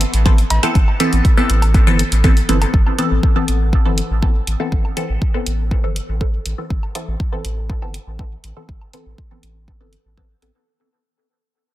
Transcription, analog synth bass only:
0.14 A1
0.50 A1
0.75 A1
1.13 A1
1.50 A1
1.87 G1
2.12 A1
2.49 G1
2.74 A1
3.11 A1
3.48 A1
3.86 G1
4.10 A1
4.47 A1
4.72 A1
5.09 A1
5.47 A1
5.84 G1
6.09 A1
6.46 A1
6.70 A1
7.08 A1
7.45 A1
7.82 G1
8.07 A1
8.44 A1
8.69 A1
9.06 A1
9.43 A1
9.81 G1
10.05 A1
10.42 A1

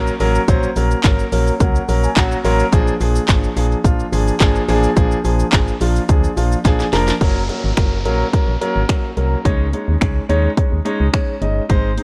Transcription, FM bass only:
Already playing: A#1
0.20 A1
0.48 A#1
0.76 A#1
1.04 G#1
1.32 A#1
1.60 C#2
1.89 A#1
2.16 A#1
2.44 A1
2.73 A#1
3.01 A#1
3.29 G#1
3.57 A#1
3.85 A#1
4.13 G#1
4.41 G#1
4.69 A1
4.97 A#1
5.25 A#1
5.53 G#1
5.81 A#1
6.09 D2
6.37 A#1
6.65 A#1
6.93 F1
7.21 F#1
7.64 G#1
7.77 F#1
8.05 A#1
8.48 A#1
8.76 G#1
9.17 C2
9.45 C#2
9.88 D#2
10.02 C#2
10.30 D#2
10.72 D#2
11.00 C#2
11.42 G1
11.70 G#1

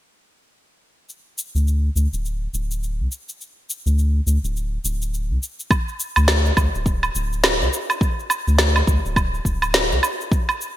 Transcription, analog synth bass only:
1.55 D2
1.96 D2
2.13 D1
2.53 D1
3.00 C2
3.86 D2
4.26 D2
4.43 D1
4.84 D1
5.30 C2
6.17 D2
6.57 D2
6.75 D1
7.15 D1
7.61 C2
8.47 D2
8.87 D2
9.05 D1
9.45 D1
9.91 C2

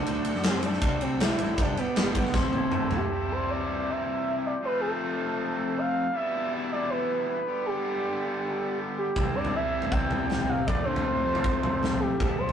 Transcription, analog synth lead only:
0.10 D4
0.47 C4
0.65 D4
1.02 C4
1.21 E4
1.61 D4
1.78 B3
2.18 B3
2.37 C4
2.96 G4
3.32 C5
3.50 D5
3.90 E5
4.46 D5
4.65 B4
4.81 A4
5.78 F5
6.16 E5
6.72 D5
6.90 B4
7.29 B4
7.66 G4
8.98 G4
9.35 D5
9.55 E5
9.91 G5
10.49 F5
10.66 D5
10.85 C5
12.00 G4
12.38 C5

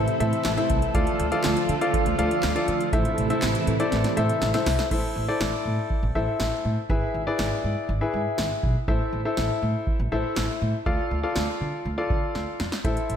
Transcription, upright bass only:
0.20 A2
0.45 A1
0.70 C2
0.95 D2
1.19 D2
1.44 D2
1.69 D3
2.06 D2
2.19 D2
2.43 D2
2.68 D3
2.93 A1
3.18 A1
3.42 A1
3.67 A2
3.92 A1
4.17 A2
4.42 A1
4.66 C2
4.91 A1
5.16 A1
5.41 A1
5.66 A2
6.03 A1
6.15 A1
6.40 A1
6.65 A2
6.90 G#1
7.14 G#1
7.39 G#1
7.64 G#2
7.89 G#1
8.14 G#2
8.38 G#1
8.63 B1
8.88 A1
9.13 A1
9.37 A1
9.62 A2
10.00 A1
10.12 A1
10.37 A1
10.61 A2
10.86 D2
11.11 D2
11.36 D2
11.61 D3
11.85 D2
12.10 D3
12.35 D2
12.60 F2
12.85 A1
13.09 A1

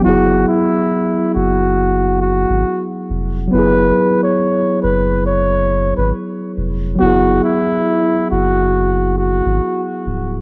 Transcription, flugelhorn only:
0.05 F#4
0.48 E4
1.35 F#4
2.22 F#4
3.53 B4
4.24 C#5
4.83 B4
5.26 C#5
5.97 B4
7.01 F#4
7.44 E4
8.31 F#4
9.18 F#4

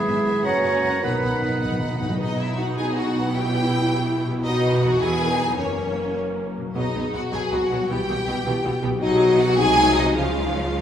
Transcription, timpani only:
1.04 B2
1.11 B2
1.19 B2
1.27 B2
1.34 B2
1.42 B2
1.50 B2
1.57 B2
1.64 B2
1.72 B2
1.80 B2
1.87 B2
1.95 B2
2.02 B2
2.10 B2

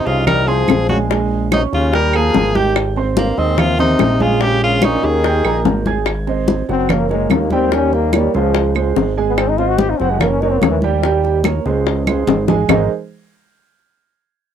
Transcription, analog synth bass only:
0.07 C2
0.69 A#1
1.73 D#2
2.35 G#1
3.38 D#2
4.00 A#1
5.04 D#2
5.45 A#1
5.65 G#1
6.69 F#1
7.31 D#2
8.35 C#2
8.96 G#1
10.00 F#1
10.63 D#2
11.66 C#2
12.28 G#1
12.69 G#1

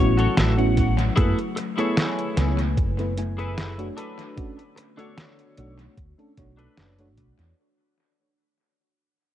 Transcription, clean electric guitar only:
Already playing: C#5
0.17 F#4 A4 C#5
0.37 E5
0.58 F#5
1.16 E4 G#4 A4 B4
1.56 muted clean electric guitar stroke
1.78 E4 G#4 A4 C#5
3.38 E4 G#4 A4 B4
3.96 D4 A4 B4
4.76 muted clean electric guitar stroke
4.97 D4 A4 C#5
6.57 D4 A4 B4

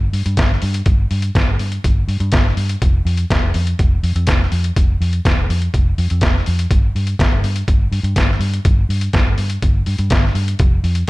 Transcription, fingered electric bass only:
0.13 G2
0.26 G2
0.37 G1
0.62 G2
0.86 G1
1.11 G2
1.35 G1
1.47 G1
1.59 G2
1.85 G1
2.08 G2
2.20 G2
2.33 G1
2.56 G2
2.82 F1
3.05 F2
3.31 F1
3.42 F1
3.55 F2
3.80 F1
4.03 F2
4.16 F2
4.28 F1
4.52 F2
4.76 F1
5.01 F2
5.25 F1
5.37 F1
5.49 F2
5.74 F1
5.98 F2
6.11 F2
6.22 F1
6.47 F2
6.71 G1
6.95 G2
7.20 G1
7.32 G1
7.43 G2
7.68 G1
7.92 G2
8.03 G2
8.17 G1
8.39 G2
8.65 G1
8.89 G2
9.14 G1
9.26 G1
9.38 G2
9.63 G1
9.87 G2
9.99 G2
10.11 G1
10.35 G2
10.60 F1
10.84 F2

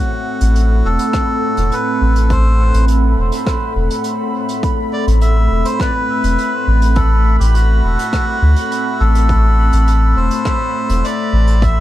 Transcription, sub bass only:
0.41 A1
0.85 E1
1.57 E1
2.01 A1
2.74 A1
3.18 E1
3.76 E1
5.07 A1
5.51 E1
6.24 E1
6.67 A1
7.40 A1
7.84 E1
8.42 D2
9.01 A1
9.73 A1
10.17 E1
10.89 E1
11.33 A1

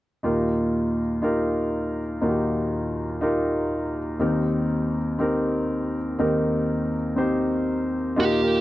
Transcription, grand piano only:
0.23 D#2 A#2 D#4 F4 G4 A#4
1.22 D#4 F4 G4 A#4
2.21 D#2 A#2 D#4 F4 F#4 A#4
2.29 G4
3.21 D#4 F4 G4 A#4
4.19 D#2 D#3 C4 D#4 G4 A#4
5.19 C4 D#4 G4 A#4
6.19 D#2 D#3 C4 D#4 G4 A#4
7.16 C4 D#4 G4 C5
8.16 D#2 A#2 D#4 F4 G4 A#4
8.42 D#4 F4 G4 A#4

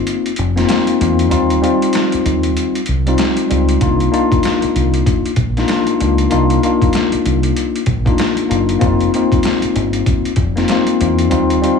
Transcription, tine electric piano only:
Already playing: A#3 C4 D#4 F4
0.56 A#3 C4 D#4 F4
0.68 A#3 C4 D#4 F4
1.01 A#3 C4 D#4 F4
1.29 G3 C4 D#4 F4
1.62 G3 C4 D#4 F4
3.06 G3 C4 D#4 F4
3.49 G3 C4 D#4 F4
3.81 A#3 D4 D#4 F4
4.12 A#3 D4 D#4 F4
5.57 A#3 D4 D#4 F4
5.68 A#3 D4 D#4 F4
5.99 A#3 D4 D#4 F4
6.30 A#3 D4 D#4 F4
6.63 A#3 D4 D#4 F4
8.05 A#3 D4 D#4 F4
8.49 A#3 D4 D#4 F4
8.79 A#3 C4 D#4 F4
9.14 A#3 C4 D#4 F4
10.56 A#3 C4 D#4 F4
10.68 A#3 C4 D#4 F4
11.01 A#3 C4 D#4 F4
11.30 G3 C4 D#4 F4
11.62 G3 C4 D#4 F4

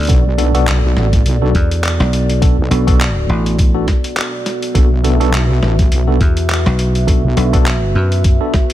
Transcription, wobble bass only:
0.09 B1
0.96 A1
1.25 B1
2.58 B1
4.75 B1
5.62 A1
5.92 B1
7.24 B1

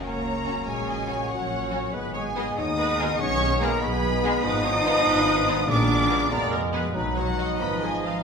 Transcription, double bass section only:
0.04 C#2
0.67 A#1
1.30 A#1
1.92 G#1
2.57 D#2
3.19 B1
3.82 B1
4.44 G#1
5.06 G#1
5.68 A#1
6.31 F1
6.95 B1
7.60 G#1

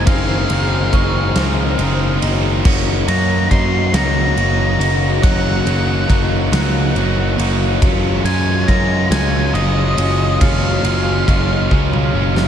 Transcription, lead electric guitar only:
0.07 F5
3.08 A#5
3.51 C6
3.95 A#5
5.23 F#5
8.25 G#5
8.68 A#5
9.11 G#5
9.54 D#5
10.41 F5

